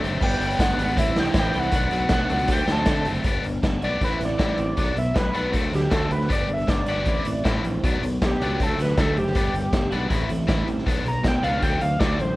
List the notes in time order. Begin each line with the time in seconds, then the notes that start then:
Already playing: D3 F#3
0.01 F#1 A3 C4 G4, closed hi-hat
0.13 closed hi-hat
0.20 G1 G3 B3 D4 F#4 G5, kick, crash
0.31 closed hi-hat
0.38 G1 B3 D4 F#4, closed hi-hat
0.42 B3 D4
0.50 closed hi-hat
0.58 G1 G3 B3 D4 F#4 F#5, kick, snare, closed hi-hat
0.76 G#1 D4 F#4, closed hi-hat
0.80 B3
0.88 closed hi-hat
0.96 A1 A2 E3 G3 C4 E4 G4 E5, kick, closed hi-hat
1.16 C2 G3 C4 G4 G5, snare, closed hi-hat
1.25 closed hi-hat
1.33 A1 A2 E3 G3 C4 E4, kick, snare, closed hi-hat
1.37 G4 G5
1.53 C2 G3 C4 E4 G4, closed hi-hat
1.59 F#5, closed hi-hat
1.71 B1 B2 F#3 A3 B3, kick, closed hi-hat
1.75 D4 F#4
1.89 B1 B3 D4 F#4, closed hi-hat
1.94 A3 F#5
2.09 B1 B2 F#3 A3 B3 D4, kick, snare, closed hi-hat
2.13 F#4
2.29 C#2 A3 D4 F#4, closed hi-hat
2.34 B3
2.39 closed hi-hat
2.48 D2 D3 F#3 A3 C4 G4, kick, closed hi-hat
2.53 C4 G5
2.58 closed hi-hat
2.67 D2 A3 C4 G4, snare, closed hi-hat
2.72 A5
2.86 D3 F#3 A3 C4 G4, kick, snare, closed hi-hat
2.90 A3 C4
2.95 closed hi-hat
3.05 F#1 A3 C4 G4, closed hi-hat
3.09 A3
3.15 closed hi-hat
3.24 G1 G3 B3 D4 G4, kick, closed hi-hat
3.44 G1 B3 D4, closed hi-hat
3.63 G1 B3 D4, kick, snare, closed hi-hat
3.81 B1 B3 D4 F#4 G4 D5, closed hi-hat
4.01 A1 A2 E3 C4 E4 B4, kick, closed hi-hat
4.19 A1 E3 C4, snare, closed hi-hat
4.25 D5
4.38 A1 E3 G3 C4 E4, kick, snare, closed hi-hat
4.58 A1 E3 C4, closed hi-hat
4.77 B1 B2 F#3 B3 D4 D5, kick, closed hi-hat
4.96 B1 F#3 B3 E5, closed hi-hat
5.14 B1 F#3 B3 D4 B4, kick, snare, closed hi-hat
5.34 B1 F#3 B3 D4 F#4, closed hi-hat
5.51 D2 D3 F#3 A3 C4, kick, closed hi-hat
5.71 D2 D3 F#3 A3 G4, snare, closed hi-hat
5.90 D2 F#3 A3 C4 A4, kick, snare, closed hi-hat
6.10 D2 F#3 A3 C4 B4, closed hi-hat
6.21 snare
6.28 G1 G3 B3 D4 G4, kick, closed hi-hat
6.33 D5
6.49 G1 B3 D4, closed hi-hat
6.53 E5
6.67 G1 B3 D4 D5, kick, snare, closed hi-hat
6.86 G1 B3 D4 F#4 G4, closed hi-hat
7.05 A1 A2 E3 C4 E4, kick, closed hi-hat
7.25 A1 E3 C4, closed hi-hat
7.44 A1 E3 G3 C4 E4, kick, snare, closed hi-hat
7.64 A#1 E3 C4, closed hi-hat
7.83 B1 B2 F#3 B3 D4, kick, closed hi-hat
8.02 B1 F#3 B3, closed hi-hat
8.22 B1 F#3 B3 D4 G4, kick, snare, closed hi-hat
8.41 C#2 F#3 B3 D4 F#4, closed hi-hat
8.60 D2 D3 F#3 A3 C4 A4, kick, closed hi-hat
8.79 D2 D3 F#3 A3 B4, snare, closed hi-hat
8.97 D2 F#3 A3 C4 A4, kick, snare, closed hi-hat
9.16 F#1 F#3 A3 C4 G4, closed hi-hat
9.26 snare
9.34 G1 G3 B3 D4, kick, closed hi-hat
9.54 G1 G3 B3, closed hi-hat
9.73 G1 G3 B3 D4, kick, snare, closed hi-hat
9.91 B1 G3 B3 D4 F#4, closed hi-hat
10.09 A1 A2 E3 C4 E4, kick, closed hi-hat
10.28 A1 E3 C4, closed hi-hat
10.47 A1 E3 G3 C4 E4, kick, snare, closed hi-hat
10.67 A1 E3 C4, closed hi-hat
10.78 snare
10.86 B1 B2 F#3 B3 D4, kick, closed hi-hat
11.05 B1 F#3 B3 A#5, closed hi-hat
11.23 B1 F#3 B3 D4, kick, snare, closed hi-hat
11.28 G5
11.43 C#2 F#3 B3 D4 F#4 F5, closed hi-hat
11.62 D2 D3 F#3 A3 C4 G5, kick, closed hi-hat
11.81 D2 D3 F#3 A3 F5, closed hi-hat
12.00 D2 F#3 A3 C4 D5, kick, snare, closed hi-hat
12.19 A1 F#3 A3 C4 C5, closed hi-hat